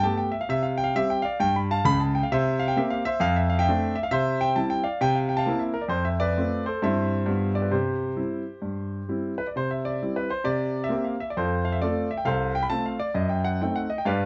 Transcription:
0.03 A3 B3 G4 A5
0.17 G5
0.32 E5
0.41 F5
0.49 C3 E5
0.63 F5
0.78 G5
0.84 F5
0.95 G3 C4 G4 E5
1.10 G5
1.22 D5 F5
1.40 G2 G5
1.56 B5
1.71 F5 A5
1.85 C#2 C#3 B5
2.00 A5
2.15 G5
2.23 F5
2.32 C3 C5 E5
2.60 F5
2.68 G5
2.76 A#3 C4 G4 E5
2.90 F5
3.05 C5 E5
3.20 F2 F5
3.36 E5
3.50 F5
3.59 E5 G5
3.68 A3 C4 D4
3.96 E5
4.03 F5
4.11 C3 C5 E5
4.41 E5 G5
4.56 G3 C4 E4 A5
4.70 G5
4.84 D5 F5
5.01 C3 G5
5.15 F5
5.29 G5
5.37 F5 A5
5.46 A#3 C4 E4
5.59 E5
5.74 A#4
5.81 D5
5.88 F2 C5
6.05 E5
6.20 B4 D5
6.37 A3 C4 F4
6.66 A4 C5
6.82 G2 G3 C4 E4 C5 E5
7.26 G2 G3 B3 F4
7.55 D5
7.62 B4
7.71 C3 G4 C5
8.16 G3 C4 E4
8.62 G2
9.08 G3 C4 E4
9.38 B4
9.47 D5
9.56 C3 C5
9.71 E5
9.85 D5
10.02 G3 C4 E4
10.16 B4
10.30 C5
10.44 C3 D5
10.84 E5
10.89 A#3 C4 G4
11.04 F5
11.20 E5
11.30 D5
11.37 F2 F4 A4 C5
11.65 F5
11.72 E5
11.81 A3 C4 F4 A4 D5
12.11 E5
12.17 G5
12.25 C2 A4 C5 F5
12.55 G5
12.63 B5
12.70 A3 C4 F4 A5
12.86 F5
13.00 D5
13.14 F#2 D#5
13.29 G5
13.45 F#5
13.61 A3 C4 D#4 G5
13.76 F#5
13.90 D#5
13.98 G5
14.05 G2 B4 D5 F5

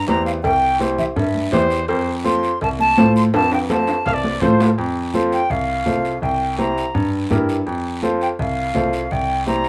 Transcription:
0.07 E2 E4 G4 C5 A#5, cowbell, high conga, short guiro
0.26 F5, short guiro
0.43 C2 G5, cowbell, long guiro
0.79 E4 G4 C5, cowbell, high conga, short guiro
0.98 E5, low conga, short guiro
1.16 G2 E5, cowbell, long guiro
1.35 high conga
1.52 E2 E4 G4 C5, cowbell, high conga, low conga, low timbale, short guiro
1.71 short guiro
1.88 F2 C5, cowbell, long guiro
2.24 F4 A4 C5 C6, cowbell, high conga, short guiro
2.43 short guiro
2.61 C2 A5, cowbell, long guiro
2.80 A5, high conga
2.97 A2 F4 A4 C5, cowbell, high conga, low timbale, short guiro
3.16 C6, short guiro
3.34 F2 A5, cowbell, high timbale, long guiro
3.52 G5, high timbale
3.69 F4 A4 C5 A5, cowbell, high conga, low timbale, short guiro
3.87 high timbale, short guiro
4.06 C2 F5, cowbell, low timbale, long guiro
4.14 D5
4.24 high conga, low timbale
4.41 A2 F4 A4 C5, cowbell, high conga, low conga, short guiro
4.51 C5
4.60 low timbale, short guiro
4.78 F2, long guiro
5.14 F4 A4 C5, high conga, short guiro
5.32 G5, short guiro
5.50 C2 F5, long guiro
5.85 C2 F4 A4 C5, high conga, short guiro
6.05 short guiro
6.22 C2 G5, long guiro
6.58 E4 G4 C5 A#5, high conga, short guiro
6.78 short guiro
6.95 G2, long guiro
7.30 G2 E4 G4 A#4, high conga, short guiro
7.49 short guiro
7.67 F2, long guiro
8.02 F4 A4 C5, high conga, short guiro
8.21 G5, short guiro
8.39 C2 F5, long guiro
8.74 C2 F4 A4 C5, high conga, short guiro
8.93 short guiro
9.11 C2 G5, long guiro
9.46 E4 G4 C5 A#5, high conga, short guiro
9.64 short guiro

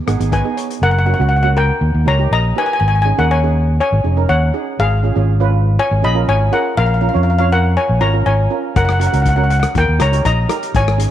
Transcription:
0.07 G#1 B3 D#4 G#4 F#5, cross-stick, closed hi-hat
0.20 G#1 B3 D#4 G#4, closed hi-hat
0.32 B4 D#5 G#5, kick, closed hi-hat
0.44 B3 D#4 G#4
0.57 C#5, closed hi-hat
0.71 closed hi-hat
0.82 F#1 A#4 F#5
0.91 F#5
0.99 F#5
1.06 A#3 C#4 F#4 F#5
1.14 F#5
1.19 C#2 A#3 C#4 F#4 F#5
1.29 F#5
1.36 F#5
1.43 A#3 C#4 F#4 F#5
1.57 A#4 G5
1.81 D#2
1.94 D#2
2.05 C#2 A#3 D#4 G4 C#5 A#5
2.18 A#3 D#4 G4
2.31 A#1 D#5 A#5
2.55 A#3 D#4 G4 B4 G#5
2.66 G#5
2.73 G#5
2.80 G#1 G#5
2.88 G#5
2.95 G#5
3.02 C#4 D#4 G#4 G#5
3.18 D#2 C#4 D#4 G#4 A#4 F#5
3.31 C#5 G#5
3.43 C#4 D#4 G#4
3.80 C#5 G#5
3.92 G#1
4.04 F1 C#4 D#4 G#4
4.17 C#4 D#4 A#4
4.29 D#2 C#5 F#5
4.54 C#4 D#4 G#4
4.79 G#1 G#4 F5
5.03 C#4 F4 G#4
5.16 G#1 C#4 F4 G#4
5.40 C#4 F4 B4
5.79 C#5 G#5
5.91 G#1
6.02 A#1 C#4 F4 G#4 D#5 B5
6.15 C#4 F4 A#4
6.28 G#1 C#5 G#5
6.52 C#4 F4 G#4 A#4 F#5
6.77 A#1 A#4 F5
6.86 F5
6.94 F5
7.01 C#4 F4 A#4 F5
7.09 F5
7.13 F2 C#4 F4 C#5 F5
7.23 F5
7.30 F5
7.39 C#4 F4 C#5 F5
7.52 A#4 F#5
7.77 C#5 G#5
7.89 A#1
8.01 G#1 C#4 F4 A#4 C#5 A#5
8.13 C#4 F4 A#4
8.26 G#1 C#5 G#5
8.50 C#4 F4 A#4
8.76 F#1 A#4 F#5, kick, closed hi-hat
8.85 F#5, cross-stick
8.92 F#5
9.00 C#4 F#4 A#4 F#5, closed hi-hat
9.07 F#5
9.12 C#2 C#4 F#4 A#4 F#5, closed hi-hat
9.22 F#5, kick, closed hi-hat
9.29 F#5
9.36 C#4 F#4 A#4 F#5
9.44 F#5
9.50 F#5, closed hi-hat
9.60 F#5, cross-stick, closed hi-hat
9.75 D#2 A#4 G5, kick, closed hi-hat
9.88 D#2
9.99 C#2 D#4 G4 A#4 C#5 A#5, cross-stick, closed hi-hat
10.12 D#4 G4 C#5, closed hi-hat
10.25 A#1 D#5 A#5, kick, closed hi-hat
10.49 D#4 G4 A#4, cross-stick, closed hi-hat
10.63 closed hi-hat
10.74 G#1 C#5 G#5, kick, closed hi-hat
10.88 cross-stick
10.98 C#4 D#4 G#4, closed hi-hat

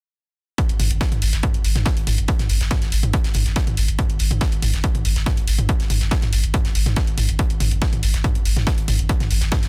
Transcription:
0.58 kick, closed hi-hat
0.69 G#1, closed hi-hat
0.79 G#1, closed hi-hat, mid tom, open hi-hat
0.90 G#1, closed hi-hat
1.01 kick, snare, closed hi-hat
1.12 G#1, closed hi-hat, mid tom
1.22 G#1, closed hi-hat, open hi-hat
1.33 G#1, snare, closed hi-hat
1.43 kick, closed hi-hat, mid tom
1.54 G#1, closed hi-hat
1.65 G#1, closed hi-hat, open hi-hat
1.76 G#1, snare, closed hi-hat, mid tom
1.86 kick, snare, closed hi-hat
1.97 G#1, closed hi-hat
2.07 G#1, closed hi-hat, mid tom, open hi-hat
2.18 G#1, closed hi-hat
2.28 kick, closed hi-hat
2.39 G#1, snare, closed hi-hat, mid tom
2.49 G#1, closed hi-hat, open hi-hat
2.61 G#1, snare, closed hi-hat
2.71 kick, snare, closed hi-hat, mid tom
2.82 G#1, snare, closed hi-hat
2.92 G#1, closed hi-hat, open hi-hat
3.03 G#1, closed hi-hat, mid tom
3.13 kick, closed hi-hat
3.24 G#1, snare, closed hi-hat
3.34 G#1, closed hi-hat, mid tom, open hi-hat
3.46 G#1, snare, closed hi-hat
3.56 kick, snare, closed hi-hat
3.67 G#1, closed hi-hat, mid tom
3.77 G#1, closed hi-hat, open hi-hat
3.88 G#1, closed hi-hat
3.99 kick, closed hi-hat, mid tom
4.09 G#1, closed hi-hat
4.19 G#1, closed hi-hat, open hi-hat
4.31 G#1, closed hi-hat, mid tom
4.41 kick, snare, closed hi-hat
4.52 G#1, closed hi-hat
4.62 G#1, closed hi-hat, mid tom, open hi-hat
4.73 G#1, snare, closed hi-hat
4.84 kick, closed hi-hat
4.95 G#1, closed hi-hat, mid tom
5.05 G#1, closed hi-hat, open hi-hat
5.16 G#1, snare, closed hi-hat
5.26 kick, snare, closed hi-hat, mid tom
5.37 G#1, closed hi-hat
5.47 G#1, closed hi-hat, open hi-hat
5.58 G#1, closed hi-hat, mid tom
5.69 kick, closed hi-hat
5.80 G#1, snare, closed hi-hat
5.90 G#1, closed hi-hat, mid tom, open hi-hat
6.01 G#1, snare, closed hi-hat
6.11 kick, snare, closed hi-hat
6.22 G#1, snare, closed hi-hat, mid tom
6.33 G#1, closed hi-hat, open hi-hat
6.44 G#1, closed hi-hat
6.54 kick, closed hi-hat, mid tom
6.65 G#1, snare, closed hi-hat
6.75 G#1, closed hi-hat, open hi-hat
6.86 G#1, snare, closed hi-hat, mid tom
6.96 kick, snare, closed hi-hat
7.07 G#1, closed hi-hat
7.18 G#1, closed hi-hat, mid tom, open hi-hat
7.29 G#1, closed hi-hat
7.39 kick, closed hi-hat
7.50 G#1, closed hi-hat
7.60 G#1, closed hi-hat, mid tom, open hi-hat
7.71 G#1, closed hi-hat
7.82 kick, snare, closed hi-hat
7.93 G#1, closed hi-hat, mid tom
8.03 G#1, closed hi-hat, open hi-hat
8.14 G#1, snare, closed hi-hat
8.24 kick, closed hi-hat, mid tom
8.35 G#1, closed hi-hat
8.45 G#1, closed hi-hat, open hi-hat
8.57 G#1, snare, closed hi-hat, mid tom
8.67 kick, snare, closed hi-hat
8.78 G#1, closed hi-hat
8.88 G#1, closed hi-hat, mid tom, open hi-hat
8.99 G#1, closed hi-hat
9.09 kick, closed hi-hat
9.20 G#1, snare, closed hi-hat, mid tom
9.31 G#1, closed hi-hat, open hi-hat
9.41 G#1, snare, closed hi-hat
9.52 kick, snare, closed hi-hat, mid tom
9.63 G#1, snare, closed hi-hat

